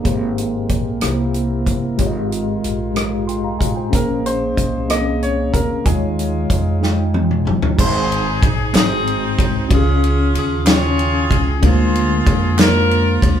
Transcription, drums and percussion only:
0.05 kick medium
0.05 closed hi-hat medium
0.38 closed hi-hat soft
0.69 kick medium
0.69 closed hi-hat medium
1.01 cross-stick medium
1.01 closed hi-hat medium
1.34 closed hi-hat soft
1.66 kick medium
1.66 closed hi-hat medium
1.98 kick medium
1.98 closed hi-hat medium
2.32 closed hi-hat soft
2.64 closed hi-hat medium
2.96 cross-stick medium
2.96 closed hi-hat medium
3.29 closed hi-hat soft
3.61 kick medium
3.61 closed hi-hat medium
3.93 kick medium
3.93 closed hi-hat medium
4.26 closed hi-hat soft
4.57 kick medium
4.57 closed hi-hat medium
4.90 cross-stick medium
4.90 closed hi-hat medium
5.22 closed hi-hat soft
5.54 kick medium
5.54 closed hi-hat medium
5.85 kick medium
5.85 closed hi-hat medium
6.19 closed hi-hat soft
6.50 kick medium
6.50 closed hi-hat medium
6.83 snare soft
7.14 high tom medium
7.31 mid tom medium
7.47 mid tom medium
7.62 floor tom medium
7.79 kick loud
7.79 crash loud
8.12 ride soft
8.43 kick loud
8.43 ride medium
8.75 snare loud
8.75 clap loud
8.75 ride medium
9.07 ride soft
9.39 kick loud
9.39 ride medium
9.71 kick loud
9.71 ride medium
10.04 ride soft
10.35 ride medium
10.66 snare loud
10.66 clap loud
10.66 ride medium
10.99 ride soft
11.31 kick loud
11.31 ride medium
11.63 kick loud
11.63 ride medium
11.95 ride soft
12.27 kick loud
12.27 ride medium
12.59 snare loud
12.59 clap loud
12.59 ride medium
12.91 ride soft
13.22 kick loud
13.22 ride medium

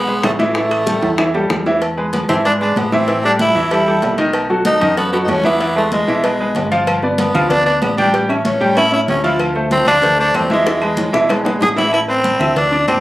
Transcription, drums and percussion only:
0.08 high bongo soft
0.08 high conga soft
0.23 high bongo medium
0.23 low bongo medium
0.23 high conga medium
0.23 high timbale medium
0.23 low timbale medium
0.23 claves medium
0.40 high conga medium
0.40 high timbale medium
0.55 high bongo medium
0.55 high conga soft
0.71 high bongo soft
0.71 high conga soft
0.71 high timbale medium
0.71 claves medium
0.87 high bongo medium
0.87 high conga loud
0.87 low timbale medium
1.03 high conga soft
1.03 high timbale loud
1.18 high bongo medium
1.18 high conga soft
1.18 high timbale medium
1.18 claves medium
1.34 high bongo soft
1.34 high conga soft
1.34 low timbale medium
1.50 high bongo medium
1.50 low bongo medium
1.50 high conga medium
1.50 low timbale medium
1.66 high bongo soft
1.66 low timbale medium
1.82 cowbell loud
1.82 high conga soft
1.82 low agogo loud
1.98 high conga soft
2.13 cowbell medium
2.13 high conga loud
2.13 low timbale medium
2.13 low agogo medium
2.29 high conga soft
2.29 low conga medium
2.29 low agogo loud
2.45 cowbell loud
2.45 high conga soft
2.60 high conga soft
2.60 low agogo medium
2.76 cowbell medium
2.76 high conga medium
2.76 low timbale medium
2.76 low agogo loud
2.92 high conga medium
3.08 cowbell loud
3.08 high conga soft
3.08 low agogo medium
3.24 high conga soft
3.24 low agogo loud
3.39 cowbell medium
3.39 high conga loud
3.39 low timbale medium
3.56 high conga soft
3.56 low agogo medium
3.71 cowbell loud
3.71 high conga soft
3.71 low agogo loud
3.87 high conga soft
4.02 cowbell medium
4.02 high conga medium
4.02 low timbale medium
4.02 low agogo medium
4.18 cowbell medium
4.33 cowbell loud
4.33 high conga soft
4.33 low agogo loud
4.50 high conga soft
4.65 cowbell medium
4.65 high conga loud
4.65 low timbale medium
4.65 low agogo medium
4.81 high conga soft
4.81 low conga medium
4.81 low agogo loud
4.97 cowbell loud
4.97 high conga soft
5.12 high conga soft
5.12 low agogo medium
5.28 cowbell medium
5.28 high conga medium
5.28 low timbale medium
5.28 low agogo loud
5.44 high conga medium
5.60 cowbell loud
5.60 high conga soft
5.60 low agogo medium
5.76 high conga soft
5.76 low agogo loud
5.92 cowbell medium
5.92 high conga loud
5.92 low timbale medium
6.07 high conga soft
6.07 low agogo medium
6.23 cowbell loud
6.23 high conga soft
6.23 low agogo loud
6.39 high conga soft
6.55 cowbell medium
6.55 high conga medium
6.55 low timbale medium
6.55 low agogo medium
6.72 cowbell medium
6.87 cowbell loud
6.87 high conga soft
6.87 low agogo loud
6.87 claves medium
7.03 high conga soft
7.18 cowbell medium
7.18 high conga loud
7.18 low timbale medium
7.18 low agogo medium
7.35 high conga soft
7.35 low conga medium
7.35 low agogo loud
7.35 claves medium
7.50 cowbell loud
7.50 high conga soft
7.50 low conga medium
7.66 high conga soft
7.66 low agogo medium
7.82 cowbell medium
7.82 high conga medium
7.82 low timbale medium
7.82 low agogo loud
7.82 claves medium
7.98 high conga medium
8.14 cowbell loud
8.14 high conga soft
8.14 low agogo medium
8.29 high conga soft
8.29 low agogo loud
8.29 claves medium
8.45 cowbell medium
8.45 high conga loud
8.45 low timbale medium
8.61 high conga soft
8.61 low agogo medium
8.77 cowbell loud
8.77 high conga soft
8.77 low agogo loud
8.77 claves medium
8.93 high conga soft
9.08 cowbell medium
9.08 high conga medium
9.08 low timbale medium
9.08 low agogo medium
9.24 cowbell medium
9.39 cowbell loud
9.39 high conga soft
9.39 low agogo loud
9.39 claves medium
9.55 high conga soft
9.71 cowbell medium
9.71 high conga loud
9.71 low timbale medium
9.71 low agogo medium
9.87 high conga soft
9.87 low conga medium
9.87 low agogo loud
9.87 claves medium
10.02 cowbell loud
10.02 high conga soft
10.02 low conga medium
10.18 high conga soft
10.18 low agogo medium
10.34 cowbell medium
10.34 high conga medium
10.34 low timbale medium
10.34 low agogo loud
10.34 claves medium
10.50 high conga medium
10.66 cowbell loud
10.66 high bongo medium
10.66 high conga soft
10.66 low agogo medium
10.82 high conga soft
10.82 low agogo loud
10.82 claves medium
10.97 cowbell medium
10.97 high conga loud
10.97 high timbale medium
11.14 high bongo medium
11.14 low agogo medium
11.29 cowbell loud
11.29 low bongo medium
11.29 high conga soft
11.29 high timbale medium
11.29 low agogo loud
11.29 claves medium
11.45 low bongo medium
11.45 low timbale medium
11.61 cowbell medium
11.61 low bongo medium
11.61 high conga medium
11.61 low timbale medium
11.61 low agogo medium
11.77 cowbell medium
11.77 low bongo medium
11.77 low timbale medium
11.93 cowbell loud
11.93 high conga soft
11.93 low agogo loud
11.93 claves medium
12.09 high conga soft
12.24 cowbell medium
12.24 high conga loud
12.24 low timbale medium
12.24 low agogo medium
12.40 high conga soft
12.40 low conga medium
12.40 low agogo loud
12.40 claves medium
12.56 cowbell loud
12.56 high conga soft
12.56 low conga medium
12.71 high conga soft
12.71 low agogo medium
12.88 cowbell medium
12.88 high conga medium
12.88 low timbale medium
12.88 low agogo loud
12.88 claves medium

